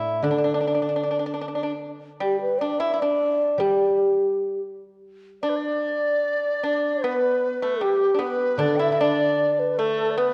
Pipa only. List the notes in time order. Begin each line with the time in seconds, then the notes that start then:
Already playing: E4
0.23 D4
0.31 D4
0.38 D4
0.44 D4
0.54 D4
0.61 D4
0.67 D4
0.74 D4
0.82 D4
0.89 D4
0.96 D4
1.03 D4
1.11 D4
1.19 D4
1.26 D4
1.34 D4
1.41 D4
1.48 D4
1.55 D4
1.63 D4
2.20 G3
2.61 D4
2.80 E4
2.94 E4
3.02 D4
3.60 G3
5.43 D4
6.63 D4
7.04 B3
7.62 A3
7.81 G3
8.14 D4
8.19 B3
8.59 D4
8.79 E4
8.92 E4
9.01 D4
9.79 A3
10.18 B3